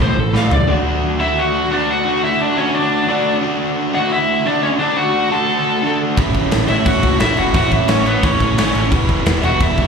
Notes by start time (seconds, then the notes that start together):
0.00 A1 A2 E3 A3 C5
0.16 A1 A2 E3 A4
0.33 A1 A2 E3 A3 F5, snare
0.51 C#2 A2 E3 D5, floor tom
0.67 D3 A3 D4 F#4
1.19 D3 A3 D4 E4 F#4 E5
1.39 F#4 F#5
1.71 D3 A3 D4 F#4 D5
1.90 F#4 F#5
2.06 D3 A3 D4 F#4
2.24 E4 E5
2.41 D4 D5
2.57 D3 A3 C#4 D4 F#4 C#5
2.74 D4 D5
3.08 D3 A3 D4 F#4 D5
3.41 D3 A3 D4 F#4
3.93 D3 A3 D4 F#4 F#5
4.12 E4 E5
4.45 D3 A3 D4 F#4 D5
4.63 C#4 C#5
4.78 D3 A3 D4 F#4 D5
4.97 F#4 F#5
5.30 D3 A3 D4 F#4 A4 A5
5.82 D3 A3 D4 F#4
6.17 A1 A2 E3 A3 C#4 E4, kick, crash
6.34 A1, kick, crash
6.51 A1, snare, crash
6.68 A1 A2 E3 A3 C#4 E4 E5, crash
6.86 A1 F#4 F#5, kick, crash
7.03 C#2, kick, crash
7.19 A1 A2 E3 A3 C#4 E4 E5, snare, crash
7.37 E1 F#4 F#5, crash
7.54 A1 A2 E3 A3 C#4 E4 F#4 F#5, kick, crash
7.71 A1 E4 E5, kick, crash
7.88 A1 C#4 C#5, snare, crash
8.06 A2 E3 A3 B3 C#4 E4 B4, crash
8.23 A1 C#4 C#5, kick, crash
8.40 A1, kick, crash
8.57 A1 A2 E3 A3 C#4 E4 C#5, snare, crash
8.75 A1, crash
8.91 E1 E3 G3 B3 E4, kick, crash
9.09 E1, kick, crash
9.26 E1, snare, crash
9.42 E1 E3 G3 B3 E4 F#4 F#5, crash
9.60 E1 E4 E5, kick, crash
9.78 G1, kick, crash